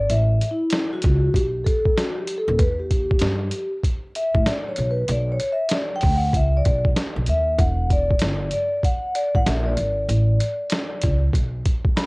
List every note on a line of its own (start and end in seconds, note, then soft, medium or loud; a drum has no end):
0.00 0.10 D5 loud
0.10 0.38 A1 medium
0.10 0.49 E5 medium
0.10 closed hi-hat medium
0.41 closed hi-hat medium
0.51 0.94 E4 medium
0.70 snare loud
0.70 closed hi-hat medium
0.93 1.36 F#4 medium
1.02 1.32 C#2 medium
1.02 kick medium
1.02 snare soft
1.02 closed hi-hat medium
1.34 1.62 B1 medium
1.34 1.66 G4 medium
1.34 kick medium
1.34 closed hi-hat medium
1.64 1.97 A4 medium
1.64 kick medium
1.64 closed hi-hat medium
1.85 kick medium
1.97 2.18 F#4 medium
1.97 snare loud
1.97 closed hi-hat medium
2.18 2.27 G4 medium
2.27 closed hi-hat medium
2.38 2.60 A4 medium
2.48 2.58 D#1 loud
2.58 3.15 E2 medium
2.58 2.78 B4 medium
2.58 kick loud
2.58 closed hi-hat medium
2.79 3.69 G4 medium
2.91 kick medium
2.91 closed hi-hat medium
3.11 kick medium
3.19 3.49 G2 loud
3.19 snare loud
3.19 closed hi-hat medium
3.51 closed hi-hat medium
3.83 kick medium
3.83 closed hi-hat medium
4.15 4.48 E5 medium
4.15 closed hi-hat medium
4.34 4.45 A2 medium
4.34 kick loud
4.46 4.69 D5 medium
4.46 snare loud
4.46 closed hi-hat medium
4.68 4.89 C#5 medium
4.76 5.06 B1 medium
4.76 closed hi-hat medium
4.91 5.11 B4 medium
5.08 5.37 B1 loud
5.08 5.32 D5 medium
5.08 closed hi-hat medium
5.32 5.52 C#5 medium
5.40 closed hi-hat medium
5.53 5.73 E5 loud
5.69 snare loud
5.69 closed hi-hat loud
5.75 5.93 D5 medium
5.96 6.16 G5 loud
6.01 6.31 D2 medium
6.01 kick medium
6.01 snare soft
6.01 open hi-hat medium
6.16 6.36 F#5 medium
6.33 6.62 C#2 medium
6.33 6.57 E5 loud
6.33 kick medium
6.33 closed hi-hat medium
6.57 6.85 D5 medium
6.65 6.94 B1 medium
6.65 kick medium
6.65 closed hi-hat medium
6.85 kick medium
6.96 snare loud
6.96 closed hi-hat medium
7.16 7.26 B1 medium
7.26 7.56 D#2 medium
7.26 7.61 E5 loud
7.26 closed hi-hat medium
7.58 8.15 E1 loud
7.58 7.89 F#5 loud
7.58 kick loud
7.58 closed hi-hat medium
7.90 8.52 D5 medium
7.90 kick medium
7.90 closed hi-hat medium
8.11 kick medium
8.19 8.50 G1 medium
8.19 snare loud
8.19 closed hi-hat loud
8.51 8.85 D5 medium
8.51 closed hi-hat medium
8.83 9.17 F#5 loud
8.83 kick medium
8.83 closed hi-hat medium
9.15 9.36 D5 medium
9.15 closed hi-hat medium
9.35 9.45 A1 medium
9.35 9.46 F#5 loud
9.35 kick medium
9.46 9.75 A#1 loud
9.46 9.67 E5 medium
9.46 snare loud
9.46 closed hi-hat medium
9.66 11.19 D5 medium
9.77 10.06 G#1 medium
9.77 closed hi-hat medium
10.09 10.37 A1 loud
10.09 closed hi-hat medium
10.40 closed hi-hat medium
10.70 snare loud
10.70 closed hi-hat loud
11.02 11.31 C#2 medium
11.02 kick medium
11.02 snare soft
11.02 closed hi-hat medium
11.33 11.62 B1 medium
11.33 kick medium
11.33 closed hi-hat medium
11.65 kick medium
11.65 closed hi-hat medium
11.85 kick loud
11.96 12.06 B5 medium
11.96 snare loud
11.96 closed hi-hat medium